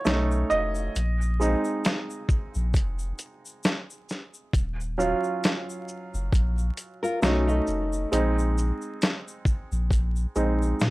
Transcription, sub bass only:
0, 0, Header, 1, 2, 480
1, 0, Start_track
1, 0, Tempo, 895522
1, 509, Time_signature, 4, 2, 24, 8
1, 5843, End_track
2, 0, Start_track
2, 0, Title_t, "Sub bass"
2, 0, Program_c, 0, 38
2, 32, Note_on_c, 0, 35, 106
2, 234, Note_off_c, 0, 35, 0
2, 272, Note_on_c, 0, 29, 96
2, 475, Note_off_c, 0, 29, 0
2, 513, Note_on_c, 0, 34, 107
2, 832, Note_off_c, 0, 34, 0
2, 1369, Note_on_c, 0, 34, 101
2, 1472, Note_on_c, 0, 29, 88
2, 1480, Note_off_c, 0, 34, 0
2, 1674, Note_off_c, 0, 29, 0
2, 2434, Note_on_c, 0, 27, 111
2, 2752, Note_off_c, 0, 27, 0
2, 3291, Note_on_c, 0, 30, 93
2, 3376, Note_off_c, 0, 30, 0
2, 3392, Note_on_c, 0, 34, 101
2, 3595, Note_off_c, 0, 34, 0
2, 3873, Note_on_c, 0, 35, 105
2, 4075, Note_off_c, 0, 35, 0
2, 4114, Note_on_c, 0, 29, 96
2, 4316, Note_off_c, 0, 29, 0
2, 4354, Note_on_c, 0, 34, 99
2, 4672, Note_off_c, 0, 34, 0
2, 5209, Note_on_c, 0, 34, 89
2, 5499, Note_off_c, 0, 34, 0
2, 5552, Note_on_c, 0, 34, 83
2, 5755, Note_off_c, 0, 34, 0
2, 5794, Note_on_c, 0, 46, 99
2, 5843, Note_off_c, 0, 46, 0
2, 5843, End_track
0, 0, End_of_file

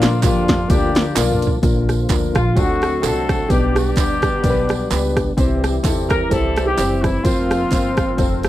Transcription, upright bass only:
0, 0, Header, 1, 2, 480
1, 0, Start_track
1, 0, Key_signature, -2, "major"
1, 0, Tempo, 467654
1, 1675, Time_signature, 4, 2, 24, 8
1, 8713, End_track
2, 0, Start_track
2, 0, Title_t, "Upright bass"
2, 0, Program_c, 0, 32
2, 0, Note_on_c, 0, 34, 91
2, 237, Note_on_c, 0, 41, 92
2, 253, Note_off_c, 0, 34, 0
2, 645, Note_off_c, 0, 41, 0
2, 716, Note_on_c, 0, 38, 91
2, 1123, Note_off_c, 0, 38, 0
2, 1195, Note_on_c, 0, 35, 80
2, 1603, Note_off_c, 0, 35, 0
2, 1672, Note_on_c, 0, 34, 85
2, 2081, Note_off_c, 0, 34, 0
2, 2151, Note_on_c, 0, 38, 82
2, 2380, Note_off_c, 0, 38, 0
2, 2419, Note_on_c, 0, 34, 84
2, 2602, Note_off_c, 0, 34, 0
2, 2635, Note_on_c, 0, 38, 104
2, 3112, Note_on_c, 0, 36, 74
2, 3127, Note_off_c, 0, 38, 0
2, 3521, Note_off_c, 0, 36, 0
2, 3593, Note_on_c, 0, 35, 90
2, 4002, Note_off_c, 0, 35, 0
2, 4072, Note_on_c, 0, 38, 79
2, 4482, Note_off_c, 0, 38, 0
2, 4556, Note_on_c, 0, 35, 91
2, 4964, Note_off_c, 0, 35, 0
2, 5037, Note_on_c, 0, 37, 88
2, 5445, Note_off_c, 0, 37, 0
2, 5517, Note_on_c, 0, 36, 89
2, 5925, Note_off_c, 0, 36, 0
2, 5996, Note_on_c, 0, 40, 77
2, 6405, Note_off_c, 0, 40, 0
2, 6480, Note_on_c, 0, 36, 93
2, 6887, Note_off_c, 0, 36, 0
2, 6961, Note_on_c, 0, 30, 80
2, 7368, Note_off_c, 0, 30, 0
2, 7439, Note_on_c, 0, 29, 90
2, 7847, Note_off_c, 0, 29, 0
2, 7918, Note_on_c, 0, 31, 76
2, 8327, Note_off_c, 0, 31, 0
2, 8401, Note_on_c, 0, 29, 83
2, 8713, Note_off_c, 0, 29, 0
2, 8713, End_track
0, 0, End_of_file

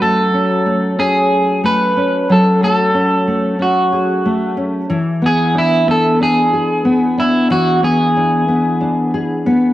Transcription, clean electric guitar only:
0, 0, Header, 1, 2, 480
1, 0, Start_track
1, 0, Tempo, 650759
1, 1694, Time_signature, 4, 2, 24, 8
1, 7179, End_track
2, 0, Start_track
2, 0, Title_t, "Clean electric guitar"
2, 0, Program_c, 0, 27
2, 14, Note_on_c, 0, 69, 92
2, 732, Note_off_c, 0, 69, 0
2, 735, Note_on_c, 0, 68, 87
2, 1185, Note_off_c, 0, 68, 0
2, 1222, Note_on_c, 0, 71, 89
2, 1708, Note_off_c, 0, 71, 0
2, 1711, Note_on_c, 0, 69, 88
2, 1926, Note_off_c, 0, 69, 0
2, 1947, Note_on_c, 0, 69, 84
2, 2670, Note_off_c, 0, 69, 0
2, 2672, Note_on_c, 0, 66, 62
2, 3354, Note_off_c, 0, 66, 0
2, 3881, Note_on_c, 0, 68, 86
2, 4092, Note_off_c, 0, 68, 0
2, 4120, Note_on_c, 0, 64, 90
2, 4331, Note_off_c, 0, 64, 0
2, 4359, Note_on_c, 0, 69, 96
2, 4589, Note_off_c, 0, 69, 0
2, 4592, Note_on_c, 0, 68, 92
2, 5273, Note_off_c, 0, 68, 0
2, 5311, Note_on_c, 0, 64, 82
2, 5526, Note_off_c, 0, 64, 0
2, 5547, Note_on_c, 0, 66, 92
2, 5783, Note_off_c, 0, 66, 0
2, 5786, Note_on_c, 0, 68, 79
2, 6709, Note_off_c, 0, 68, 0
2, 7179, End_track
0, 0, End_of_file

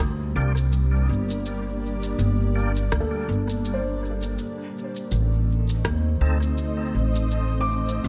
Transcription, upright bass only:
0, 0, Header, 1, 2, 480
1, 0, Start_track
1, 0, Key_signature, -2, "minor"
1, 0, Tempo, 731707
1, 956, Time_signature, 4, 2, 24, 8
1, 5301, End_track
2, 0, Start_track
2, 0, Title_t, "Upright bass"
2, 0, Program_c, 0, 32
2, 0, Note_on_c, 0, 38, 98
2, 212, Note_off_c, 0, 38, 0
2, 236, Note_on_c, 0, 36, 94
2, 696, Note_off_c, 0, 36, 0
2, 716, Note_on_c, 0, 31, 79
2, 1417, Note_off_c, 0, 31, 0
2, 1435, Note_on_c, 0, 31, 91
2, 1896, Note_off_c, 0, 31, 0
2, 1918, Note_on_c, 0, 38, 81
2, 2151, Note_off_c, 0, 38, 0
2, 2155, Note_on_c, 0, 31, 90
2, 2856, Note_off_c, 0, 31, 0
2, 3355, Note_on_c, 0, 33, 86
2, 3816, Note_off_c, 0, 33, 0
2, 3836, Note_on_c, 0, 39, 98
2, 4052, Note_off_c, 0, 39, 0
2, 4074, Note_on_c, 0, 38, 96
2, 4536, Note_off_c, 0, 38, 0
2, 4555, Note_on_c, 0, 33, 79
2, 5256, Note_off_c, 0, 33, 0
2, 5276, Note_on_c, 0, 33, 89
2, 5301, Note_off_c, 0, 33, 0
2, 5301, End_track
0, 0, End_of_file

